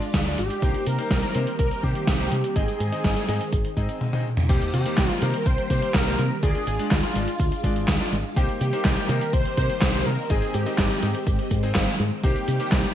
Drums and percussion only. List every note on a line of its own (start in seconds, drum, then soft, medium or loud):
0.02 closed hi-hat soft
0.14 kick loud
0.14 snare loud
0.14 closed hi-hat medium
0.26 closed hi-hat soft
0.38 closed hi-hat medium
0.50 closed hi-hat soft
0.62 kick loud
0.62 closed hi-hat medium
0.74 closed hi-hat soft
0.86 closed hi-hat medium
0.99 closed hi-hat soft
1.11 kick loud
1.11 snare loud
1.11 closed hi-hat medium
1.23 closed hi-hat soft
1.35 closed hi-hat medium
1.47 closed hi-hat soft
1.59 kick loud
1.59 closed hi-hat medium
1.71 closed hi-hat soft
1.83 kick medium
1.95 closed hi-hat soft
2.07 kick loud
2.07 snare loud
2.07 closed hi-hat loud
2.20 closed hi-hat soft
2.32 closed hi-hat medium
2.44 closed hi-hat soft
2.56 kick loud
2.56 closed hi-hat medium
2.68 closed hi-hat soft
2.80 closed hi-hat medium
2.92 closed hi-hat soft
3.04 kick loud
3.04 snare loud
3.04 closed hi-hat medium
3.16 closed hi-hat soft
3.29 snare soft
3.29 closed hi-hat medium
3.41 closed hi-hat soft
3.53 kick loud
3.53 closed hi-hat loud
3.65 closed hi-hat soft
3.77 kick medium
3.77 closed hi-hat soft
3.89 closed hi-hat soft
4.01 high tom medium
4.13 high tom medium
4.37 mid tom medium
4.49 kick loud
4.49 closed hi-hat loud
4.49 crash loud
4.61 closed hi-hat soft
4.74 closed hi-hat medium
4.86 closed hi-hat soft
4.98 kick loud
4.98 snare loud
4.98 clap loud
4.98 closed hi-hat loud
5.10 closed hi-hat soft
5.22 closed hi-hat medium
5.34 closed hi-hat soft
5.46 kick loud
5.46 closed hi-hat loud
5.58 closed hi-hat soft
5.70 kick medium
5.70 closed hi-hat medium
5.82 closed hi-hat soft
5.94 kick loud
5.94 snare loud
5.94 clap loud
5.94 closed hi-hat loud
6.07 closed hi-hat soft
6.19 closed hi-hat soft
6.43 kick loud
6.43 closed hi-hat loud
6.55 closed hi-hat soft
6.67 closed hi-hat medium
6.79 closed hi-hat soft
6.91 kick loud
6.91 snare loud
6.91 clap loud
6.91 closed hi-hat medium
7.03 closed hi-hat soft
7.16 closed hi-hat medium
7.28 closed hi-hat soft
7.40 kick loud
7.40 closed hi-hat medium
7.52 closed hi-hat soft
7.64 kick medium
7.64 closed hi-hat medium
7.76 closed hi-hat soft
7.88 kick loud
7.88 snare loud
7.88 clap loud
7.88 closed hi-hat medium
8.00 closed hi-hat soft
8.13 closed hi-hat soft
8.36 kick loud
8.36 closed hi-hat medium
8.49 closed hi-hat soft
8.61 closed hi-hat medium
8.73 closed hi-hat soft
8.85 kick loud
8.85 snare loud
8.85 clap loud
8.85 closed hi-hat medium
8.97 closed hi-hat soft
9.09 closed hi-hat medium
9.21 closed hi-hat soft
9.33 kick loud
9.33 closed hi-hat medium
9.45 closed hi-hat soft
9.57 kick medium
9.57 closed hi-hat medium
9.70 closed hi-hat soft
9.82 kick loud
9.82 snare loud
9.82 clap loud
9.82 closed hi-hat loud
9.94 closed hi-hat soft
10.06 closed hi-hat soft
10.30 kick loud
10.30 closed hi-hat medium
10.42 closed hi-hat soft
10.54 closed hi-hat medium
10.66 closed hi-hat soft
10.78 kick loud
10.78 snare loud
10.78 clap loud
10.78 closed hi-hat medium
10.91 closed hi-hat soft
11.03 closed hi-hat medium
11.15 closed hi-hat soft
11.27 kick loud
11.27 closed hi-hat medium
11.39 closed hi-hat soft
11.51 kick medium
11.51 closed hi-hat medium
11.63 closed hi-hat soft
11.75 kick loud
11.75 snare loud
11.75 clap loud
11.75 closed hi-hat medium
11.87 closed hi-hat soft
11.99 closed hi-hat soft
12.24 kick loud
12.24 closed hi-hat medium
12.36 closed hi-hat soft
12.48 closed hi-hat medium
12.60 closed hi-hat soft
12.72 kick loud
12.72 snare loud
12.72 clap loud
12.72 closed hi-hat medium
12.84 closed hi-hat soft